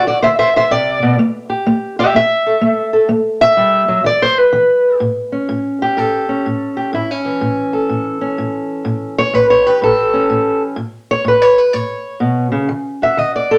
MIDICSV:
0, 0, Header, 1, 2, 480
1, 0, Start_track
1, 0, Tempo, 479233
1, 1186, Time_signature, 4, 2, 24, 8
1, 13605, End_track
2, 0, Start_track
2, 0, Title_t, "Steel-string acoustic guitar"
2, 0, Program_c, 0, 25
2, 0, Note_on_c, 0, 50, 78
2, 70, Note_on_c, 0, 66, 77
2, 76, Note_on_c, 0, 74, 93
2, 147, Note_off_c, 0, 66, 0
2, 197, Note_off_c, 0, 50, 0
2, 220, Note_off_c, 0, 74, 0
2, 224, Note_on_c, 0, 72, 98
2, 232, Note_on_c, 0, 50, 77
2, 237, Note_on_c, 0, 76, 107
2, 278, Note_off_c, 0, 72, 0
2, 376, Note_off_c, 0, 76, 0
2, 388, Note_on_c, 0, 72, 90
2, 390, Note_on_c, 0, 76, 106
2, 489, Note_off_c, 0, 72, 0
2, 548, Note_off_c, 0, 76, 0
2, 564, Note_on_c, 0, 72, 88
2, 570, Note_on_c, 0, 76, 105
2, 632, Note_off_c, 0, 72, 0
2, 677, Note_off_c, 0, 50, 0
2, 708, Note_on_c, 0, 48, 71
2, 715, Note_on_c, 0, 74, 120
2, 719, Note_off_c, 0, 76, 0
2, 1021, Note_off_c, 0, 48, 0
2, 1027, Note_on_c, 0, 47, 69
2, 1187, Note_off_c, 0, 47, 0
2, 1189, Note_off_c, 0, 74, 0
2, 1192, Note_on_c, 0, 57, 90
2, 1498, Note_on_c, 0, 67, 53
2, 1633, Note_off_c, 0, 57, 0
2, 1667, Note_on_c, 0, 57, 82
2, 1981, Note_off_c, 0, 67, 0
2, 1994, Note_on_c, 0, 67, 92
2, 2002, Note_on_c, 0, 76, 107
2, 2110, Note_off_c, 0, 57, 0
2, 2145, Note_on_c, 0, 57, 74
2, 2147, Note_off_c, 0, 67, 0
2, 2151, Note_off_c, 0, 76, 0
2, 2163, Note_on_c, 0, 76, 116
2, 2468, Note_on_c, 0, 69, 50
2, 2589, Note_off_c, 0, 57, 0
2, 2617, Note_on_c, 0, 57, 82
2, 2924, Note_off_c, 0, 69, 0
2, 2936, Note_on_c, 0, 69, 53
2, 3064, Note_off_c, 0, 57, 0
2, 3080, Note_off_c, 0, 69, 0
2, 3091, Note_on_c, 0, 57, 82
2, 3109, Note_off_c, 0, 76, 0
2, 3418, Note_on_c, 0, 76, 127
2, 3541, Note_off_c, 0, 57, 0
2, 3575, Note_on_c, 0, 55, 72
2, 3884, Note_off_c, 0, 55, 0
2, 3888, Note_on_c, 0, 54, 70
2, 4045, Note_off_c, 0, 54, 0
2, 4049, Note_on_c, 0, 52, 73
2, 4057, Note_off_c, 0, 76, 0
2, 4068, Note_on_c, 0, 74, 105
2, 4223, Note_off_c, 0, 74, 0
2, 4229, Note_on_c, 0, 72, 106
2, 4387, Note_off_c, 0, 72, 0
2, 4387, Note_on_c, 0, 71, 108
2, 4500, Note_off_c, 0, 52, 0
2, 4533, Note_on_c, 0, 52, 79
2, 4983, Note_off_c, 0, 52, 0
2, 5010, Note_on_c, 0, 45, 74
2, 5023, Note_off_c, 0, 71, 0
2, 5331, Note_on_c, 0, 61, 42
2, 5462, Note_off_c, 0, 45, 0
2, 5496, Note_on_c, 0, 45, 69
2, 5830, Note_on_c, 0, 67, 81
2, 5946, Note_off_c, 0, 45, 0
2, 5979, Note_on_c, 0, 45, 70
2, 5986, Note_on_c, 0, 69, 99
2, 6294, Note_off_c, 0, 61, 0
2, 6298, Note_on_c, 0, 61, 42
2, 6429, Note_off_c, 0, 45, 0
2, 6467, Note_off_c, 0, 67, 0
2, 6470, Note_on_c, 0, 45, 66
2, 6778, Note_on_c, 0, 67, 46
2, 6914, Note_off_c, 0, 45, 0
2, 6940, Note_on_c, 0, 45, 80
2, 6953, Note_off_c, 0, 67, 0
2, 6957, Note_on_c, 0, 64, 76
2, 7119, Note_off_c, 0, 61, 0
2, 7119, Note_off_c, 0, 64, 0
2, 7119, Note_on_c, 0, 61, 86
2, 7261, Note_on_c, 0, 52, 41
2, 7390, Note_off_c, 0, 45, 0
2, 7422, Note_on_c, 0, 45, 75
2, 7427, Note_off_c, 0, 69, 0
2, 7743, Note_on_c, 0, 69, 46
2, 7872, Note_off_c, 0, 45, 0
2, 7906, Note_on_c, 0, 45, 62
2, 8075, Note_off_c, 0, 61, 0
2, 8227, Note_on_c, 0, 61, 41
2, 8355, Note_off_c, 0, 45, 0
2, 8395, Note_on_c, 0, 45, 73
2, 8840, Note_off_c, 0, 45, 0
2, 8861, Note_on_c, 0, 45, 80
2, 9195, Note_off_c, 0, 69, 0
2, 9199, Note_on_c, 0, 73, 107
2, 9313, Note_off_c, 0, 45, 0
2, 9350, Note_on_c, 0, 45, 76
2, 9360, Note_off_c, 0, 73, 0
2, 9360, Note_on_c, 0, 71, 85
2, 9391, Note_off_c, 0, 61, 0
2, 9514, Note_off_c, 0, 71, 0
2, 9518, Note_on_c, 0, 73, 95
2, 9680, Note_on_c, 0, 67, 44
2, 9681, Note_off_c, 0, 73, 0
2, 9681, Note_on_c, 0, 71, 81
2, 9798, Note_off_c, 0, 45, 0
2, 9834, Note_on_c, 0, 45, 70
2, 9836, Note_off_c, 0, 71, 0
2, 9851, Note_on_c, 0, 69, 100
2, 10151, Note_on_c, 0, 61, 43
2, 10280, Note_off_c, 0, 45, 0
2, 10313, Note_on_c, 0, 45, 72
2, 10636, Note_off_c, 0, 69, 0
2, 10760, Note_off_c, 0, 45, 0
2, 10774, Note_off_c, 0, 61, 0
2, 10779, Note_off_c, 0, 67, 0
2, 10780, Note_on_c, 0, 45, 80
2, 10793, Note_off_c, 0, 52, 0
2, 11128, Note_on_c, 0, 73, 113
2, 11233, Note_off_c, 0, 45, 0
2, 11264, Note_on_c, 0, 45, 78
2, 11280, Note_off_c, 0, 73, 0
2, 11299, Note_on_c, 0, 71, 88
2, 11436, Note_off_c, 0, 71, 0
2, 11436, Note_on_c, 0, 73, 93
2, 11600, Note_off_c, 0, 73, 0
2, 11600, Note_on_c, 0, 71, 79
2, 11715, Note_off_c, 0, 45, 0
2, 11750, Note_off_c, 0, 71, 0
2, 11750, Note_on_c, 0, 73, 97
2, 11758, Note_on_c, 0, 45, 65
2, 12201, Note_off_c, 0, 45, 0
2, 12221, Note_on_c, 0, 47, 62
2, 12533, Note_off_c, 0, 47, 0
2, 12537, Note_on_c, 0, 49, 61
2, 12545, Note_off_c, 0, 73, 0
2, 12706, Note_off_c, 0, 49, 0
2, 12706, Note_on_c, 0, 50, 76
2, 13042, Note_on_c, 0, 66, 41
2, 13052, Note_on_c, 0, 76, 90
2, 13155, Note_off_c, 0, 50, 0
2, 13193, Note_on_c, 0, 50, 77
2, 13204, Note_off_c, 0, 76, 0
2, 13204, Note_on_c, 0, 75, 88
2, 13357, Note_off_c, 0, 75, 0
2, 13378, Note_on_c, 0, 74, 75
2, 13532, Note_on_c, 0, 69, 88
2, 13605, Note_off_c, 0, 50, 0
2, 13605, Note_off_c, 0, 66, 0
2, 13605, Note_off_c, 0, 69, 0
2, 13605, Note_off_c, 0, 74, 0
2, 13605, End_track
0, 0, End_of_file